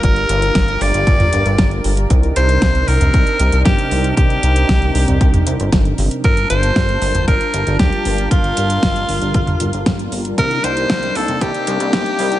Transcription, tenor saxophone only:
\new Staff \with { instrumentName = "Tenor saxophone" } { \time 4/4 \key g \minor \tempo 4 = 116 bes'4. d''2 r8 | r8 c''4 bes'4. g'4 | g'2. r4 | bes'8 c''4. bes'4 g'4 |
f'2.~ f'8 r8 | bes'8 c''4 a'8 g'2 | }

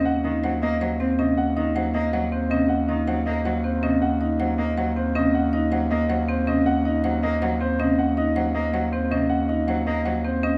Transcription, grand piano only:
\new Staff \with { instrumentName = "Grand piano" } { \time 7/8 \key ees \dorian \tempo 4 = 159 ges''8 ees''8 ges''8 ees''8 ges''8 c''8 ees''8 | ges''8 ees''8 ges''8 ees''8 ges''8 c''8 ees''8 | ges''8 ees''8 ges''8 ees''8 ges''8 c''8 ees''8 | ges''8 ees''8 ges''8 ees''8 ges''8 c''8 ees''8 |
ges''8 ees''8 ges''8 ees''8 ges''8 c''8 ees''8 | ges''8 ees''8 ges''8 ees''8 ges''8 c''8 ees''8 | ges''8 ees''8 ges''8 ees''8 ges''8 c''8 ees''8 | ges''8 ees''8 ges''8 ees''8 ges''8 c''8 ees''8 | }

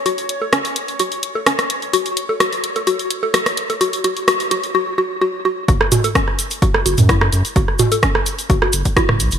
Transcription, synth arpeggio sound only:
\new Staff \with { instrumentName = "Synth arpeggio sound" } { \time 4/4 \key fis \minor \tempo 4 = 128 fis'16 r8 a'16 cis'16 r8. fis'16 r8 a'16 cis'16 r8. | fis'16 r8 a'16 fis'16 r8 a'16 fis'16 r8 a'16 fis'16 r8 a'16 | fis'16 r16 fis'16 r16 fis'16 r16 fis'16 r16 fis'16 r16 fis'16 r16 fis'16 r16 fis'16 r16 | fis'16 r8 a'16 cis'16 r8. fis'16 r8. e'16 r8. |
fis'16 r8 a'16 cis'16 r8. fis'16 r8. e'16 r8. | }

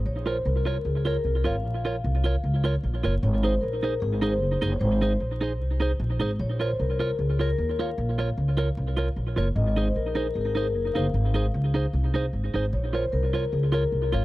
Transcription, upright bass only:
\new Staff \with { instrumentName = "Upright bass" } { \clef bass \time 4/4 \key bes \minor \tempo 4 = 152 bes,,4 c,4 des,4 c,8 aes,,8 | bes,,4 c,4 des,4 bes,,8 ges,,8 | aes,,4 bes,,4 aes,,4 ges,,8 ges,,8 | aes,,4 r4 c,4 bes,,8 aes,,8 |
bes,,4 c,4 des,4 ees,4 | bes,,4 des,4 c,4 bes,,8 ges,,8 | aes,,4 r4 aes,,4 ges,,8 ges,,8 | aes,,4 des,4 c,4 aes,,8 aes,,8 |
bes,,4 c,4 des,4 c,8 aes,,8 | }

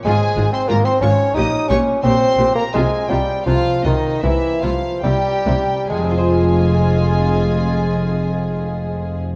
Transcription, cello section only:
\new Staff \with { instrumentName = "Cello section" } { \clef bass \time 4/4 \key f \minor \tempo 4 = 77 aes,8 aes,8 aes,8 aes,8 bes,8 bes,8 bes,8 bes,8 | c8 c8 c8 c8 c8 c8 c8 c8 | f,1 | }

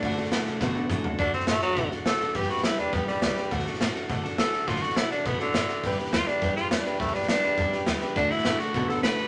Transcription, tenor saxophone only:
\new Staff \with { instrumentName = "Tenor saxophone" } { \time 4/4 \key d \mixolydian \tempo 4 = 207 d'4 r2. | d'8 c'8 a8 fis4 r8 a'4 | g'8 fis'8 e'8 d'8 b8 g4. | r2. a'4 |
f'8 fis'8 e'8 d'8 b8 d4.~ | d8 r8 f'8 d'4 f'8 d'4 | a8 d'8 d'2 r4 | d'8 e'4 fis'4 a'8 b'4 | }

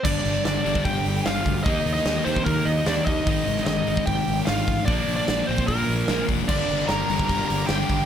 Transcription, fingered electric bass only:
\new Staff \with { instrumentName = "Fingered electric bass" } { \clef bass \time 4/4 \key g \phrygian \tempo 4 = 149 g,,8 g,,8 g,,8 g,,8 g,,8 g,,8 g,,8 d,8 | ees,8 ees,8 ees,8 ees,8 ees,8 ees,8 ees,8 ees,8 | aes,,8 aes,,8 aes,,8 aes,,8 aes,,8 aes,,8 aes,,8 a,,8 | bes,,8 bes,,8 bes,,8 bes,,8 bes,,8 bes,,8 bes,,8 f,,8 |
g,,8 g,,8 g,,8 g,,8 g,,8 g,,8 g,,8 g,,8 | }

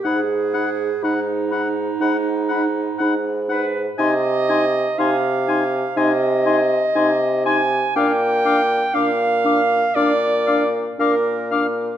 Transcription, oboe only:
\new Staff \with { instrumentName = "Oboe" } { \time 4/4 \key gis \minor \tempo 4 = 60 fis''8 fis''8 fis''8 fis''8 fis''8 fis''8 fis''8 fis''8 | \key bes \mixolydian aes''8 aes''8 aes''8 aes''8 aes''8 aes''8 aes''8 aes''8 | f''8 f''8 f''8 f''8 f''8 f''8 f''8 f''8 | }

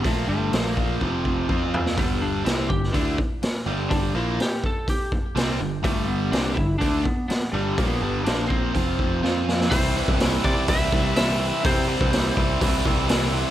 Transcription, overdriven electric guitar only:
\new Staff \with { instrumentName = "Overdriven electric guitar" } { \clef bass \time 4/4 \key f \lydian \tempo 4 = 124 <bes, f bes>8 <g, d g>8 <bes, f bes>4 <f, c f>4 <f c' f'>4 | <g, d g>4 <c g c'>8 <g, d>8 <d a d'>8 r4 <g, d g>8~ | <g, d g>8 <bes, f bes>8 r2 <c g c'>8 <g, d>8 | <g, d g>4 <c g c'>8 <g, d>8 <d a d'>8 r4 <g, d g>8 |
<bes, f bes>8 <g, d g>8 <bes, f bes>4 <f, c f>4 <f c' f'>4 | \key c \lydian <c e g c' e'>8 <c e g c' e'>8 <c e g c' e'>8 <c e g c' e'>8 <c e g c' e'>8 <c e g c' e'>8 <c e g c' e'>8 <c e g c' e'>8 | <c e g c' e'>8 <c e g c' e'>8 <c e g c' e'>8 <c e g c' e'>8 <c e g c' e'>8 <c e g c' e'>8 <c e g c' e'>8 <c e g c' e'>8 | }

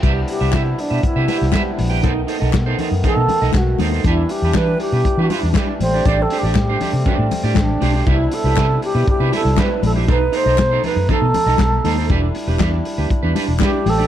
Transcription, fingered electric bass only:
\new Staff \with { instrumentName = "Fingered electric bass" } { \clef bass \time 4/4 \key c \major \tempo 4 = 119 c,8 r16 c,16 c8 r16 b,16 r16 c16 r16 c,16 r8 bes,,8 | b,,8 r16 b,,16 b,8 r16 fis,16 r16 b,16 r16 b,,16 b,,8 dis,8 | e,8 r16 e,16 e8 r16 b,16 r16 e16 r16 e,16 r8 a,,8 | a,,8 r16 a,,16 a,8 r16 c16 r16 a,16 r16 a,16 a,,8 b,,8 |
c,8 r16 c,16 c8 r16 b,16 r16 c16 r16 c,16 r8 bes,,8 | b,,8 r16 b,,16 b,8 r16 fis,16 r16 b,16 r16 b,,16 b,,8 dis,8 | e,,8 r16 e,,16 e,8 r16 d,16 r16 e,16 r16 e,,16 r8 a,,8 | }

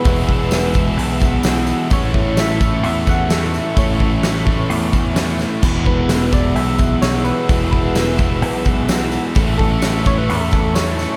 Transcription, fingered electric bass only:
\new Staff \with { instrumentName = "Fingered electric bass" } { \clef bass \time 4/4 \key e \major \tempo 4 = 129 e,,2 b,,2 | a,,2 e,2 | a,,2 e,2 | e,,2 b,,2 |
e,,2 b,,2 | a,,2 e,2 | }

